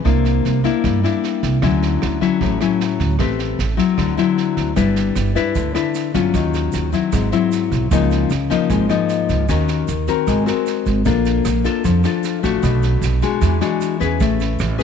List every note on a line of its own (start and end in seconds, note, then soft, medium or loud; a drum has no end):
0.04 0.42 C2 medium
0.04 0.81 C3 medium
0.04 0.61 A#3 medium
0.04 0.61 D4 medium
0.04 0.61 E4 medium
0.04 kick medium
0.04 cross-stick medium
0.04 snare soft
0.25 snare soft
0.45 0.63 C2 medium
0.45 snare soft
0.64 1.00 A#3 medium
0.64 1.00 D4 medium
0.64 1.00 E4 medium
0.64 kick soft
0.64 snare soft
0.84 1.02 G2 medium
0.84 1.60 G3 medium
0.84 kick medium
0.84 cross-stick medium
0.84 snare soft
1.03 1.59 A#3 medium
1.03 1.60 D4 medium
1.03 1.59 E4 medium
1.03 snare soft
1.24 snare soft
1.43 1.61 C2 medium
1.43 kick soft
1.43 snare soft
1.62 1.99 D2 medium
1.62 2.39 D3 medium
1.62 2.18 F#3 medium
1.62 2.18 C#4 medium
1.62 2.19 E4 medium
1.62 kick medium
1.62 cross-stick medium
1.62 snare soft
1.82 snare soft
2.02 2.20 D2 medium
2.02 cross-stick medium
2.02 snare soft
2.21 2.57 F#3 medium
2.21 2.58 C#4 medium
2.21 2.58 E4 medium
2.21 kick soft
2.21 snare soft
2.41 2.59 A1 medium
2.41 3.18 A2 medium
2.41 kick medium
2.41 snare soft
2.61 3.17 F#3 medium
2.61 3.17 C#4 medium
2.61 3.17 E4 medium
2.61 cross-stick medium
2.61 snare soft
2.80 snare soft
3.00 3.18 D2 medium
3.00 kick soft
3.00 snare soft
3.19 3.56 A1 medium
3.19 3.77 A3 medium
3.19 3.59 C4 medium
3.19 3.59 G4 medium
3.19 3.59 B4 medium
3.19 kick medium
3.19 cross-stick medium
3.19 snare soft
3.39 snare soft
3.59 3.77 A1 medium
3.59 snare soft
3.77 4.14 F#3 medium
3.77 4.14 C4 medium
3.77 4.15 E4 medium
3.77 kick soft
3.77 snare soft
3.98 4.16 D2 medium
3.98 4.75 D3 medium
3.98 kick medium
3.98 cross-stick medium
3.98 snare soft
4.17 4.73 F#3 medium
4.17 4.74 C4 medium
4.17 4.74 E4 medium
4.17 snare soft
4.38 snare soft
4.57 4.75 D2 medium
4.57 kick soft
4.57 snare soft
4.76 5.13 G1 medium
4.76 5.53 G3 medium
4.76 5.32 D4 medium
4.76 5.32 E4 medium
4.76 5.32 B4 medium
4.76 kick medium
4.76 cross-stick medium
4.76 snare soft
4.76 shaker medium
4.96 snare soft
4.96 shaker soft
5.16 5.34 G1 medium
5.16 cross-stick medium
5.16 snare soft
5.16 shaker medium
5.35 5.72 D4 medium
5.35 5.72 E4 medium
5.35 5.72 B4 medium
5.35 kick soft
5.35 snare soft
5.35 shaker soft
5.55 5.74 D2 medium
5.55 6.32 D3 soft
5.55 kick medium
5.55 snare soft
5.55 shaker medium
5.75 6.11 D4 medium
5.75 6.11 E4 medium
5.75 6.11 B4 medium
5.75 cross-stick medium
5.75 snare soft
5.75 shaker soft
5.94 snare soft
5.94 shaker medium
6.14 6.33 G1 medium
6.14 6.90 F#3 medium
6.14 6.90 C#4 medium
6.14 6.90 F4 medium
6.14 kick soft
6.14 snare soft
6.14 shaker soft
6.34 6.70 D#2 medium
6.34 7.11 D#3 medium
6.34 kick medium
6.34 cross-stick medium
6.34 snare soft
6.34 shaker medium
6.53 snare soft
6.53 shaker soft
6.72 6.92 D#2 medium
6.72 snare soft
6.72 shaker medium
6.92 7.29 F#3 medium
6.92 7.29 C4 medium
6.92 7.29 E4 medium
6.92 kick soft
6.92 snare soft
6.92 shaker soft
7.12 7.31 G#1 medium
7.12 7.89 G#2 medium
7.12 kick medium
7.12 cross-stick medium
7.12 snare soft
7.12 shaker medium
7.32 7.88 F#3 medium
7.32 7.88 C4 medium
7.32 7.88 E4 medium
7.32 snare soft
7.32 shaker soft
7.52 snare soft
7.52 shaker medium
7.71 7.90 B1 medium
7.71 kick soft
7.71 snare soft
7.71 shaker soft
7.91 8.28 C#2 medium
7.91 8.68 C#3 medium
7.91 8.30 F3 medium
7.91 8.31 A#3 medium
7.91 8.31 D#4 medium
7.91 kick medium
7.91 cross-stick medium
7.91 snare soft
7.91 shaker medium
8.11 snare soft
8.11 shaker soft
8.30 8.49 C#2 medium
8.30 cross-stick medium
8.30 snare soft
8.30 shaker medium
8.50 8.86 F3 medium
8.50 8.86 A#3 medium
8.50 8.87 D#4 medium
8.50 kick soft
8.50 snare soft
8.50 shaker soft
8.70 8.88 G#1 medium
8.70 9.46 G#2 medium
8.70 kick medium
8.70 snare soft
8.70 shaker medium
8.89 9.45 F3 medium
8.89 9.45 A#3 medium
8.89 9.45 D#4 medium
8.89 cross-stick medium
8.89 snare soft
8.89 shaker soft
9.09 snare soft
9.09 shaker medium
9.29 9.47 C#2 medium
9.29 kick soft
9.29 snare soft
9.29 shaker soft
9.49 9.85 D#2 medium
9.49 10.25 D#3 medium
9.49 9.88 C#4 medium
9.49 9.88 F#4 medium
9.49 9.88 A#4 medium
9.49 kick medium
9.49 cross-stick medium
9.49 snare soft
9.49 shaker medium
9.68 snare soft
9.68 shaker soft
9.88 10.06 D#2 medium
9.88 snare soft
9.88 shaker medium
10.07 10.44 C4 medium
10.07 10.44 F#4 medium
10.07 10.44 A#4 medium
10.07 kick soft
10.07 snare soft
10.07 shaker soft
10.27 10.46 G#1 medium
10.27 11.04 G#3 medium
10.27 kick medium
10.27 cross-stick medium
10.27 snare soft
10.27 shaker medium
10.46 11.02 C4 medium
10.46 11.03 F#4 medium
10.46 11.03 A#4 medium
10.46 snare soft
10.46 shaker soft
10.66 snare soft
10.66 shaker medium
10.86 11.04 G#1 medium
10.86 kick soft
10.86 snare soft
10.86 shaker soft
11.05 11.42 A#1 medium
11.05 11.82 A#3 medium
11.05 11.45 D4 medium
11.05 11.45 F4 medium
11.05 11.45 A4 medium
11.05 kick medium
11.05 cross-stick medium
11.05 snare soft
11.05 shaker medium
11.25 snare soft
11.25 shaker soft
11.45 11.63 A#1 medium
11.45 cross-stick medium
11.45 snare soft
11.45 shaker medium
11.64 12.01 D4 medium
11.64 12.01 F4 medium
11.64 12.01 A4 medium
11.64 kick soft
11.64 snare soft
11.64 shaker soft
11.84 12.03 F2 medium
11.84 12.61 F3 medium
11.84 kick medium
11.84 snare soft
11.84 shaker medium
12.04 12.40 D4 medium
12.04 12.40 F4 medium
12.04 12.41 A4 medium
12.04 cross-stick medium
12.04 snare soft
12.04 shaker soft
12.23 snare soft
12.23 shaker medium
12.43 12.62 A1 medium
12.43 13.19 A3 medium
12.43 13.19 D4 medium
12.43 13.19 F#4 medium
12.43 kick soft
12.43 snare soft
12.43 shaker soft
12.63 13.00 B1 medium
12.63 13.39 B2 medium
12.63 kick medium
12.63 cross-stick medium
12.63 snare soft
12.63 shaker medium
12.82 snare soft
12.82 shaker soft
13.01 13.20 B1 medium
13.01 snare soft
13.01 shaker medium
13.22 13.58 G#3 medium
13.22 13.58 D4 medium
13.22 13.59 F#4 medium
13.22 kick soft
13.22 snare soft
13.22 shaker soft
13.41 13.60 E2 medium
13.41 14.18 E3 medium
13.41 kick medium
13.41 cross-stick medium
13.41 snare soft
13.41 shaker medium
13.61 13.97 G#3 medium
13.61 13.97 D4 medium
13.61 13.98 F#4 medium
13.61 snare soft
13.61 shaker soft
13.81 snare soft
13.81 shaker medium
14.00 14.19 E2 medium
14.00 14.76 C#4 medium
14.00 14.76 G#4 medium
14.00 14.76 B4 medium
14.00 kick soft
14.00 snare soft
14.00 shaker soft
14.20 14.57 A1 medium
14.20 14.83 A3 medium
14.20 kick medium
14.20 cross-stick medium
14.20 snare soft
14.20 shaker medium
14.40 snare soft
14.40 shaker soft
14.59 14.78 A1 medium
14.59 cross-stick medium
14.59 snare soft
14.59 shaker medium
14.78 14.83 C#4 medium
14.78 14.83 G#4 medium
14.78 14.83 B4 medium
14.78 kick soft
14.78 snare soft
14.78 shaker soft